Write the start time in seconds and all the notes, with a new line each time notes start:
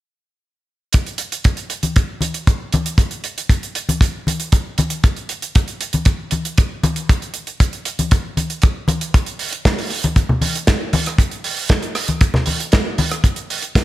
0.93 kick, closed hi-hat
1.07 closed hi-hat
1.18 closed hi-hat
1.32 closed hi-hat
1.44 kick, closed hi-hat
1.57 closed hi-hat
1.70 closed hi-hat
1.83 closed hi-hat, high conga
1.96 kick, closed hi-hat
2.21 closed hi-hat, high conga
2.34 closed hi-hat
2.47 kick, closed hi-hat
2.73 closed hi-hat, high conga
2.86 closed hi-hat
2.98 kick, closed hi-hat
3.11 closed hi-hat
3.24 closed hi-hat
3.38 closed hi-hat
3.49 kick, closed hi-hat
3.63 closed hi-hat
3.75 closed hi-hat
3.89 closed hi-hat, high conga
4.01 kick, closed hi-hat
4.27 closed hi-hat, high conga
4.40 closed hi-hat
4.52 kick, closed hi-hat
4.78 closed hi-hat, high conga
4.90 closed hi-hat
5.04 kick, closed hi-hat
5.16 closed hi-hat
5.29 closed hi-hat
5.42 closed hi-hat
5.55 kick, closed hi-hat
5.68 closed hi-hat
5.81 closed hi-hat
5.93 closed hi-hat, high conga
6.05 kick, closed hi-hat
6.31 closed hi-hat, high conga
6.45 closed hi-hat
6.58 kick, closed hi-hat
6.83 closed hi-hat, high conga
6.96 closed hi-hat
7.09 kick, closed hi-hat
7.22 closed hi-hat
7.34 closed hi-hat
7.47 closed hi-hat
7.60 kick, closed hi-hat
7.73 closed hi-hat
7.85 closed hi-hat
7.99 closed hi-hat, high conga
8.11 kick, closed hi-hat
8.37 closed hi-hat, high conga
8.50 closed hi-hat
8.62 kick, closed hi-hat
8.88 closed hi-hat, high conga
9.01 closed hi-hat
9.14 kick, closed hi-hat
9.26 closed hi-hat
9.39 open hi-hat
9.53 closed hi-hat
9.65 kick, snare, closed hi-hat
9.78 open hi-hat
9.90 open hi-hat
10.04 closed hi-hat, high conga
10.16 kick, closed hi-hat
10.29 low conga
10.41 open hi-hat, high conga
10.55 closed hi-hat
10.67 kick, snare, closed hi-hat
10.93 open hi-hat, high conga
11.06 cross-stick, closed hi-hat
11.18 kick, closed hi-hat
11.31 closed hi-hat
11.44 open hi-hat
11.57 open hi-hat
11.69 kick, snare, closed hi-hat
11.83 closed hi-hat
11.95 cross-stick, open hi-hat
12.08 closed hi-hat, high conga
12.21 kick, closed hi-hat
12.34 snare, low conga
12.46 open hi-hat, high conga
12.60 closed hi-hat
12.72 kick, snare, closed hi-hat
12.98 open hi-hat, high conga
13.11 cross-stick, closed hi-hat
13.24 kick, closed hi-hat
13.36 closed hi-hat
13.50 open hi-hat
13.62 closed hi-hat
13.75 kick, snare, closed hi-hat